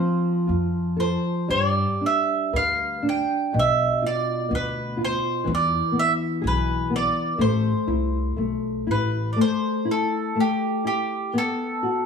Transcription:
Already playing: nylon-string guitar F3 C4, mandolin C5
0.47 upright bass F2, nylon-string guitar F4
0.97 nylon-string guitar A4, mandolin C5
1.48 upright bass G2, nylon-string guitar G3, mandolin C#5
1.68 mandolin D5
2.01 nylon-string guitar D4
2.06 mandolin E5
2.53 upright bass D2, nylon-string guitar B4, mandolin F5
3.02 nylon-string guitar D4
3.09 mandolin G5
3.53 upright bass B1, nylon-string guitar B2
3.59 mandolin E5
4.02 nylon-string guitar F4
4.06 mandolin D5
4.49 upright bass D2, nylon-string guitar B3
4.55 mandolin B4
4.97 nylon-string guitar F4
5.05 mandolin C5
5.44 upright bass E2, nylon-string guitar E3
5.55 mandolin D5
5.92 nylon-string guitar B3
5.99 mandolin E5
6.42 upright bass B1, nylon-string guitar G#4
6.47 mandolin B4
6.90 nylon-string guitar B3
6.96 mandolin D5
7.38 upright bass A1, nylon-string guitar A3, mandolin C5
7.87 upright bass C2, nylon-string guitar E4
8.36 upright bass B1, nylon-string guitar A3
8.87 upright bass A1, nylon-string guitar E4
8.91 mandolin B4
9.33 nylon-string guitar A3, mandolin D5
9.41 mandolin C5
9.85 nylon-string guitar E4
9.91 mandolin A4
10.35 nylon-string guitar A3
10.40 mandolin G4
10.85 nylon-string guitar E4, mandolin G4
11.33 nylon-string guitar B3
11.38 mandolin A4
11.83 nylon-string guitar F#4

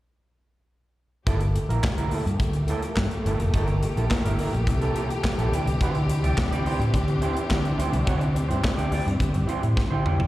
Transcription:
1.27 fingered electric bass G1, string section E3 A3 A#3 G4, clean electric guitar A#3 E4 A4, kick, closed hi-hat
1.40 muted clean electric guitar stroke, closed hi-hat
1.56 muted clean electric guitar stroke, closed hi-hat
1.69 fingered electric bass A#1, clean electric guitar A#3 E4 A#4, closed hi-hat
1.84 muted clean electric guitar stroke, kick, snare, clap
1.97 fingered electric bass D2, clean electric guitar A#3 E4 A#4, closed hi-hat
2.11 clean electric guitar A#3 E4 A4, open hi-hat
2.26 fingered electric bass G2, muted clean electric guitar stroke, closed hi-hat
2.40 fingered electric bass D2, muted clean electric guitar stroke, kick, closed hi-hat
2.53 muted clean electric guitar stroke, closed hi-hat
2.68 clean electric guitar A#3 E4 A4, closed hi-hat
2.82 muted clean electric guitar stroke, closed hi-hat
2.96 fingered electric bass G2, kick, snare, clap
3.11 muted clean electric guitar stroke, closed hi-hat
3.25 fingered electric bass G1, clean electric guitar A#3 E4 A4, closed hi-hat
3.40 fingered electric bass F1, muted clean electric guitar stroke, closed hi-hat
3.54 fingered electric bass G1, clean electric guitar A#3 E4 A#4, kick, closed hi-hat
3.68 muted clean electric guitar stroke, closed hi-hat
3.83 muted clean electric guitar stroke, closed hi-hat
3.96 fingered electric bass A#1, clean electric guitar A#3 E4 A4, closed hi-hat
4.11 muted clean electric guitar stroke, kick, snare, clap
4.25 fingered electric bass G1, clean electric guitar A#3 E4 A#4, closed hi-hat
4.39 clean electric guitar A#3 E4 A#4, open hi-hat
4.53 fingered electric bass A#1, muted clean electric guitar stroke, closed hi-hat
4.67 fingered electric bass C2, muted clean electric guitar stroke, kick, closed hi-hat
4.81 clean electric guitar A#3 E4 A4, closed hi-hat
4.95 clean electric guitar A#3 E4 A4, closed hi-hat
5.10 muted clean electric guitar stroke, closed hi-hat
5.24 muted clean electric guitar stroke, kick, snare, clap
5.38 fingered electric bass A#1, clean electric guitar A#3 E4 A4, closed hi-hat
5.51 fingered electric bass D2, string section C4 D4, clean electric guitar E4 G4 D5, closed hi-hat
5.66 fingered electric bass C2, muted clean electric guitar stroke, closed hi-hat
5.81 fingered electric bass D2, clean electric guitar E4 G4 C5, kick, closed hi-hat
5.95 muted clean electric guitar stroke, closed hi-hat
6.09 muted clean electric guitar stroke, closed hi-hat
6.23 fingered electric bass C2, clean electric guitar E4 G4 D5, closed hi-hat
6.37 muted clean electric guitar stroke, kick, snare, clap
6.51 fingered electric bass D2, clean electric guitar E4 G4 D5, closed hi-hat
6.65 clean electric guitar E4 G4 C5, open hi-hat
6.79 fingered electric bass A2, muted clean electric guitar stroke, closed hi-hat
6.94 fingered electric bass D2, muted clean electric guitar stroke, kick, closed hi-hat
7.08 muted clean electric guitar stroke, closed hi-hat
7.22 clean electric guitar E4 G4 C5, closed hi-hat
7.36 muted clean electric guitar stroke, closed hi-hat
7.50 fingered electric bass D3, kick, snare, clap
7.64 muted clean electric guitar stroke, closed hi-hat
7.78 fingered electric bass D2, clean electric guitar E4 G4 C5, closed hi-hat
7.92 fingered electric bass C2, muted clean electric guitar stroke, closed hi-hat
8.06 fingered electric bass D2, clean electric guitar E4 G4 D5, kick, closed hi-hat
8.21 muted clean electric guitar stroke, closed hi-hat
8.35 muted clean electric guitar stroke, closed hi-hat
8.48 fingered electric bass G2, clean electric guitar E4 G4 C5, closed hi-hat
8.62 muted clean electric guitar stroke, kick, snare, clap
8.77 fingered electric bass D2, clean electric guitar E4 G4 D5, closed hi-hat
8.92 clean electric guitar E4 G4 D5, open hi-hat
9.06 fingered electric bass G2, muted clean electric guitar stroke, closed hi-hat
9.20 fingered electric bass D3, muted clean electric guitar stroke, kick, closed hi-hat
9.34 fingered electric bass G2, muted clean electric guitar stroke, closed hi-hat
9.47 clean electric guitar E4 G4 C5, closed hi-hat
9.62 fingered electric bass A2, muted clean electric guitar stroke, closed hi-hat
9.77 muted clean electric guitar stroke, kick, snare
9.91 fingered electric bass D3, clean electric guitar E4 G4 C5
10.05 clean electric guitar E4 G4 D5, mid tom
10.19 fingered electric bass F1, muted clean electric guitar stroke, floor tom

